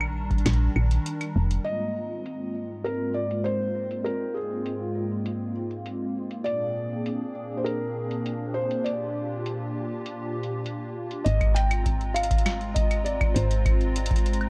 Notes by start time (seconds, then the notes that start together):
Already playing: A#1 D#3 G3 D4 A#5
0.01 claves
0.31 kick, closed hi-hat
0.38 closed hi-hat
0.46 A#1, snare, closed hi-hat, claves
0.53 closed hi-hat
0.76 A#1, claves
0.91 closed hi-hat
1.06 closed hi-hat
1.21 closed hi-hat, claves
1.36 F1
1.51 closed hi-hat
1.64 G#2 G#3 A#3 C4 F4 D#5, closed hi-hat
2.26 closed hi-hat
2.84 A#4, closed hi-hat
3.14 D5
3.31 closed hi-hat
3.44 C5, closed hi-hat
3.91 closed hi-hat
4.04 A#4, closed hi-hat
4.34 G#4
4.66 closed hi-hat
5.26 closed hi-hat
5.71 closed hi-hat
5.86 closed hi-hat
6.31 closed hi-hat
6.44 A#2 C4 D4 G#4 D5, closed hi-hat
7.06 closed hi-hat
7.57 C5
7.64 A#4, closed hi-hat
8.11 closed hi-hat
8.26 closed hi-hat
8.54 C5
8.71 closed hi-hat
8.84 F4 G4 D5, closed hi-hat
9.46 closed hi-hat
10.06 closed hi-hat
10.43 closed hi-hat
10.66 closed hi-hat
11.11 closed hi-hat
11.24 G#1 G#3 C4 F4 D#5 A#5, closed hi-hat
11.41 kick, closed hi-hat, claves
11.54 G5, closed hi-hat
11.71 closed hi-hat, claves
11.86 kick, closed hi-hat
12.01 closed hi-hat
12.14 F5, closed hi-hat, claves
12.23 closed hi-hat
12.31 kick, closed hi-hat
12.38 closed hi-hat
12.46 snare, closed hi-hat, claves
12.61 closed hi-hat
12.74 D#5, kick, closed hi-hat
12.91 closed hi-hat, claves
13.04 D5, closed hi-hat
13.21 kick, closed hi-hat, claves
13.34 G#1 C5, closed hi-hat
13.51 closed hi-hat
13.66 kick, closed hi-hat, claves
13.81 closed hi-hat
13.96 closed hi-hat
14.06 closed hi-hat
14.11 kick, closed hi-hat
14.16 closed hi-hat
14.18 closed hi-hat
14.26 closed hi-hat
14.33 closed hi-hat
14.41 closed hi-hat, claves